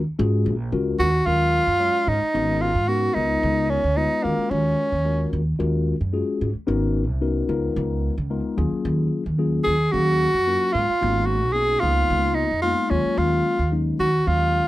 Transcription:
0.18 upright bass G#2, tine electric piano G#3 C#4 F4 F#4 G#4
0.46 upright bass A#1
0.72 upright bass C#2, tine electric piano G#3 C#4 F4 F#4 A#4
0.99 upright bass D#2, tenor saxophone F#4
1.26 upright bass D#2, tine electric piano F#3 G#3 C#4 F4 A#4, tenor saxophone F4
1.67 upright bass F#2
1.79 tine electric piano G#3 C#4 F4 F#4 C#5
2.07 upright bass G#2, tenor saxophone D#4
2.22 muted upright bass stroke
2.34 upright bass G#1, tine electric piano B3 C#4 D#4 F#4 A#4
2.61 tenor saxophone F4
2.75 upright bass G#2
2.88 tine electric piano B3 C#4 D#4 F#4 A#4, tenor saxophone F#4
3.14 upright bass C#2, tine electric piano G#3 B3 D#4 F4 A#4, tenor saxophone D#4
3.43 upright bass C#2
3.69 tenor saxophone C#4
3.84 upright bass D2
3.96 tine electric piano G#3 B3 D#4 F4 B4, tenor saxophone D#4
4.23 upright bass D#2, tine electric piano G#3 C#4 F4 F#4 A#4, tenor saxophone A#3
4.38 muted upright bass stroke
4.51 upright bass D#2, tenor saxophone C#4
4.92 upright bass D#2
5.05 tine electric piano G#3 C#4 F4 F#4 A#4
5.33 upright bass D#2
5.59 upright bass D#2, tine electric piano G#3 C#4 F4 F#4 A#4
6.01 upright bass F#2
6.13 tine electric piano G#3 C#4 F4 F#4 G#4
6.41 upright bass G#2
6.55 muted upright bass stroke
6.67 upright bass G#1, tine electric piano B3 C#4 D#4 F#4 A#4
7.09 upright bass C2
7.21 tine electric piano B3 C#4 D#4 F#4 A#4
7.48 upright bass C#2, tine electric piano G#3 B3 D#4 F4 A#4
7.76 upright bass C#2
8.18 upright bass C#2
8.30 tine electric piano G#3 B3 D#4 F4 A#4
8.57 upright bass D#2, tine electric piano F#3 A#3 C#4 F4 G#4
8.72 muted upright bass stroke
8.85 upright bass D#2
9.26 upright bass D#2
9.38 tine electric piano F#3 A#3 C#4 F4 G#4
9.64 upright bass D#2, tenor saxophone G#4
9.92 upright bass D#2, tine electric piano F#3 A#3 C#4 G#4 F5, tenor saxophone F#4
10.34 upright bass F#2
10.47 tine electric piano F#3 A#3 C#4 F4 A#4
10.73 upright bass G#2, tenor saxophone F4
10.89 muted upright bass stroke
11.01 upright bass G#1, tine electric piano A#3 B3 C#4 D#4 F#4
11.26 tenor saxophone F#4
11.43 upright bass B1
11.52 tine electric piano A#3 B3 C#4 D#4 F#4, tenor saxophone G#4
11.80 upright bass C#2, tine electric piano G#3 A#3 B3 D#4 F4, tenor saxophone F4
12.10 upright bass C#2
12.35 tenor saxophone D#4
12.51 upright bass F2
12.62 tine electric piano G#3 A#3 B3 D#4 F4, tenor saxophone F4
12.90 upright bass D#2, tine electric piano F#3 G#3 A#3 C#4 F4, tenor saxophone C#4
13.05 muted upright bass stroke
13.17 upright bass D#2, tenor saxophone F4
13.59 upright bass D#2
13.72 tine electric piano F#3 G#3 A#3 C#4 D#4
13.99 upright bass D#2, tenor saxophone F#4
14.26 upright bass D#2, tine electric piano F#3 G#3 A#3 C#4 F4, tenor saxophone F4

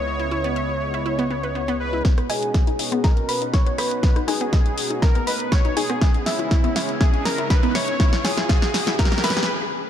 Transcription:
Already playing: analog synth bass C#2, analog synth pad C#3 G#3 B3 E4 D#5, supersaw synth C#5
0.19 synth arpeggio sound E4
0.31 synth arpeggio sound E4
0.44 synth arpeggio sound B3
0.56 synth arpeggio sound E5
0.94 synth arpeggio sound E4
1.06 synth arpeggio sound E4
1.19 synth arpeggio sound B3
1.31 synth arpeggio sound B3
1.43 synth arpeggio sound B4
1.55 synth arpeggio sound B3
1.68 synth arpeggio sound B3
1.80 supersaw synth B4
1.93 synth arpeggio sound E4
2.05 analog synth pad B2 B3 C#4 D#4 F#4, synth arpeggio sound D#4, kick, snare, closed hi-hat, riser
2.18 synth arpeggio sound B3, cross-stick, closed hi-hat
2.30 supersaw synth G#4, synth arpeggio sound D#5, synth pluck G#5, open hi-hat
2.43 closed hi-hat
2.54 kick, snare, closed hi-hat
2.67 synth arpeggio sound D#4, closed hi-hat
2.79 synth arpeggio sound D#4, open hi-hat
2.92 synth arpeggio sound B3, closed hi-hat
3.04 supersaw synth A#4, synth arpeggio sound D#5, synth pluck A#5, kick, snare, closed hi-hat
3.17 closed hi-hat
3.29 supersaw synth B4, synth pluck B5, open hi-hat
3.42 synth arpeggio sound D#4, closed hi-hat
3.53 synth arpeggio sound D#4, supersaw synth C#5, synth pluck C#6, kick, snare, closed hi-hat
3.66 synth arpeggio sound B3, closed hi-hat
3.78 supersaw synth B4, synth arpeggio sound D#5, synth pluck B5, cross-stick, open hi-hat
3.91 closed hi-hat
4.03 kick, snare, closed hi-hat
4.16 synth arpeggio sound D#4, cross-stick, closed hi-hat
4.28 synth arpeggio sound D#4, supersaw synth G#4, synth pluck G#5, cross-stick, open hi-hat
4.41 synth arpeggio sound B3, closed hi-hat
4.53 synth arpeggio sound D#5, kick, snare, closed hi-hat
4.66 closed hi-hat
4.78 open hi-hat
4.90 synth arpeggio sound D#4, closed hi-hat
5.02 synth arpeggio sound D#4, supersaw synth A#4, synth pluck A#5, kick, snare, closed hi-hat
5.15 synth arpeggio sound B3, closed hi-hat
5.27 supersaw synth B4, synth arpeggio sound D#5, synth pluck B5, open hi-hat
5.40 closed hi-hat
5.52 supersaw synth C#5, synth pluck C#6, kick, snare, closed hi-hat
5.65 synth arpeggio sound D#4, closed hi-hat
5.76 synth arpeggio sound D#4, supersaw synth G#4, synth pluck G#5, open hi-hat
5.90 synth arpeggio sound B3, cross-stick
6.01 analog synth pad C#3 G#3 C#4 E4, synth arpeggio sound E5, kick, snare, closed hi-hat
6.14 closed hi-hat
6.26 supersaw synth E4, synth pluck E5, snare, open hi-hat
6.39 synth arpeggio sound E4, closed hi-hat
6.51 synth arpeggio sound E4, kick, snare, closed hi-hat
6.64 synth arpeggio sound B3, closed hi-hat
6.76 synth arpeggio sound E5, snare, open hi-hat
6.89 closed hi-hat
7.00 supersaw synth G#4, synth arpeggio sound E5, synth pluck G#5, kick, snare, closed hi-hat
7.14 closed hi-hat
7.25 supersaw synth A#4, synth pluck A#5, snare, open hi-hat
7.38 synth arpeggio sound E4, closed hi-hat
7.50 synth arpeggio sound E4, supersaw synth B4, synth pluck B5, kick, snare, closed hi-hat
7.63 synth arpeggio sound B3, closed hi-hat
7.75 supersaw synth C#5, synth arpeggio sound E5, synth pluck C#6, snare, open hi-hat
7.88 closed hi-hat
8.00 synth arpeggio sound E5, kick, snare, closed hi-hat
8.13 snare, closed hi-hat
8.24 supersaw synth G#4, synth pluck G#5, snare, open hi-hat
8.38 synth arpeggio sound E4, snare
8.49 synth arpeggio sound E5, kick, snare, closed hi-hat
8.62 snare, closed hi-hat
8.74 snare, open hi-hat
8.87 synth arpeggio sound E4, snare
8.99 supersaw synth A#4, synth arpeggio sound E5, synth pluck A#5, kick, snare, closed hi-hat
9.05 snare
9.12 snare, closed hi-hat
9.18 snare
9.24 supersaw synth B4, synth arpeggio sound E5, synth pluck B5, snare, open hi-hat
9.30 snare
9.37 snare, closed hi-hat
9.43 snare

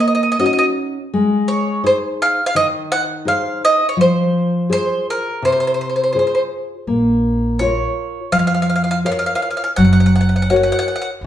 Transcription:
Already playing: nylon-string guitar A#3
0.00 mandolin D#5
0.08 mandolin D#5
0.15 mandolin D#5
0.23 mandolin D#5
0.32 mandolin D#5
0.39 nylon-string guitar C#4 D#4 F#4, mandolin D#5
0.46 mandolin D#5
0.53 mandolin D#5
0.59 mandolin D#5
1.14 nylon-string guitar G#3
1.48 mandolin C#5
1.84 nylon-string guitar D#4 G#4 C5, mandolin C5
2.22 mandolin F5
2.46 mandolin F5
2.55 nylon-string guitar D#3, mandolin D#5
2.92 mandolin F#5
3.25 nylon-string guitar D#4 G#4 C5, mandolin F5
3.65 mandolin D#5
3.89 mandolin C#5
3.97 nylon-string guitar F3
4.01 mandolin C5
4.69 nylon-string guitar F4 G#4 C5, mandolin C5
5.10 mandolin A#4
5.42 nylon-string guitar C3, mandolin C5
5.52 mandolin C5
5.60 mandolin C5
5.67 mandolin C5
5.74 mandolin C5
5.81 mandolin C5
5.90 mandolin C5
5.96 mandolin C5
6.04 mandolin C5
6.13 nylon-string guitar F4 G#4 C5, mandolin C5
6.19 mandolin C5
6.27 mandolin C5
6.35 mandolin C5
6.87 upright bass A#1, nylon-string guitar A#3
7.59 nylon-string guitar F4 A#4 C#5, mandolin C#5
8.32 upright bass F2, nylon-string guitar F3, mandolin F5
8.39 mandolin F5
8.47 mandolin F5
8.55 mandolin F5
8.62 mandolin F5
8.70 mandolin F5
8.76 mandolin F5
8.84 mandolin F5
8.91 mandolin F5
9.04 nylon-string guitar F4 A#4 C#5, mandolin F5
9.12 mandolin F5
9.19 mandolin F5
9.26 mandolin F5
9.35 mandolin F5
9.42 mandolin F5
9.51 mandolin F5
9.57 mandolin F5
9.64 mandolin F5
9.76 upright bass F#1, nylon-string guitar F#3, mandolin F#5
9.85 mandolin F#5
9.93 mandolin F#5
10.00 mandolin F#5
10.06 mandolin F#5
10.16 mandolin F#5
10.21 mandolin F#5
10.29 mandolin F#5
10.36 mandolin F#5
10.42 mandolin F#5
10.50 nylon-string guitar F#4 A#4 C#5, mandolin F#5
10.56 mandolin F#5
10.63 mandolin F#5
10.72 mandolin F#5
10.79 mandolin F#5
10.88 mandolin F#5
10.96 mandolin F#5
11.02 mandolin F#5
11.21 upright bass C#2

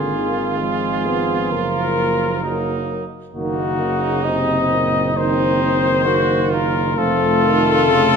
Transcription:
Already playing: tuba G#1, trombone D3, french horn A#3, trumpet F4 G#4
0.14 trombone D#3
0.60 trombone F3, french horn G#3, trumpet G#4
1.06 french horn B3
1.51 tuba F#1, french horn A#3, trumpet A#4
1.97 french horn A#3
2.43 trombone F#3, trumpet D#4
3.33 tuba F#1, trombone D#3, french horn A#3, trumpet D#4 F#4
3.80 trombone C#3
4.24 trombone C3, french horn C4, trumpet D#5
4.72 trombone A#2
5.15 trombone D#3, french horn C4, trumpet D#4 C5
5.62 trombone D#3
6.04 french horn A#3, trumpet F#4
6.50 trumpet F4 A#4
6.97 tuba F1, trombone F3, french horn A3, trumpet F4 A4
7.44 trombone D#3
7.89 trombone C#3

